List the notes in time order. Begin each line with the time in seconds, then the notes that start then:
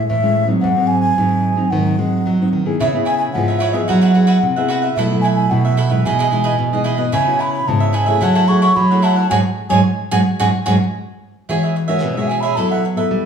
0.08 A2 E3 E5
0.23 G#3 C#4 E4
0.47 F#3 C4 D#4
0.61 G#2 F#5
0.76 F#3 C4 D#4
0.87 G#5
1.01 G#5
1.18 G#2 D#3 F#3 C4 D#4
1.56 F#3 C4 D#4
1.71 G#2 D#3 F#3 C4 D#4 F#5
1.99 F#3 G#3 C4 D#4
2.26 D#3 F#3
2.41 F#3 C4 D#4
2.53 D#3
2.65 B3 E4 G#4
2.80 C#3 E4 B4 C#5 E5
2.94 B3 E4 G#4
3.05 E4 B4 C#5 E5 G#5
3.18 G#5
3.33 G#2 F3 B3 E4 G#4 F#5
3.48 B4 C#5 E5
3.59 E4 B4 C#5 E5
3.72 B3 E4 G#4 B4 C#5 D#5 E5
3.86 F#3 F#4 B4 E5 F#5
4.01 F#4 B4 E5 F#5
4.14 B3 E4 F#4 G#4 B4 E5 F#5
4.27 F#4 B4 E5 F#5
4.43 C3
4.56 B3 E4 G#4 B4 E5 F#5
4.68 F#4 B4 E5 F#5
4.82 B4 E5 F#5
4.95 B2 F#3 A3 E4 A4 B4 E5
5.11 F#3 A3 E4
5.21 E4 A4 B4 E5 G#5
5.35 G#5
5.50 F#2 B2 F#3 A3 E4 F#5
5.65 A4 B4 E5
5.77 E4 A4 B4 E5
5.90 E3 G#3 D#4 A4 B4 E5
6.05 B2 E4 G#4 B4 D#5 G#5
6.19 E4 G#4 B4 D#5
6.31 E3 G#3 D#4 E4 G#4 B4 D#5
6.44 E4 G#4 B4 D#5
6.58 B2
6.72 E3 G#3 D#4 G#4 B4 D#5
6.84 E4 G#4 B4 D#5
6.97 B3 E4 F#4 G#4 B4 D#5
7.12 C#3 E4 B4 C#5 E5 G#5
7.27 B3 E4 F#4
7.39 E4 B4 C#5 E5 B5
7.53 B5
7.68 G#2 C#3 B3 E4 F#4 A5
7.80 B4 C#5 E5
7.93 E4 B4 C#5 E5 G#5
8.06 A3 E4 G#4 B4 C#5 E5
8.21 F#3 E4 A4 C#5 F#5 A5
8.35 E4 A4 C#5 F#5
8.47 A3 E4 G#4 A4 C#5 F#5 C#6
8.60 E4 A4 C#5 F#5 C#6
8.76 C#3 F#3 B5
8.91 A3 E4 G#4 A4 C#5 F#5
9.02 E4 A4 C#5 F#5 A5
9.16 A4 C#5 F#5
9.30 G#2 F#3 G#3 C#4 F#4 G#4 C#5 G#5
9.69 G#2 F#3 G#3 C#4 F#4 G#4 C#5 G#5
10.11 G#2 F#3 G#3 C#4 F#4 G#4 C#5 G#5
10.40 G#2 F#3 G#3 C#4 F#4 G#4 C#5 G#5
10.65 G#2 F#3 G#3 C#4 F#4 G#4 C#5 G#5
11.49 E3 G#3 C#4 E4 F#4 G#4 C#5 E5
11.63 G#4 C#5 E5
11.76 muted cavaquinho stroke
11.88 G#3 C#4 F#4 G#4 A#4 C#5 E5
12.02 B2 B4
12.15 G#3 C#4 F#4 C#5 E5
12.19 G#4
12.28 E4 G#4 C#5 G#5
12.32 E5
12.41 C#5 E5 B5
12.45 G#4
12.56 F#3 B3 E4 A4 B4 E5 A5
12.70 B4 E5 F#5
12.85 muted cavaquinho stroke
12.96 B3 E4 A4 B4 E5
13.11 G3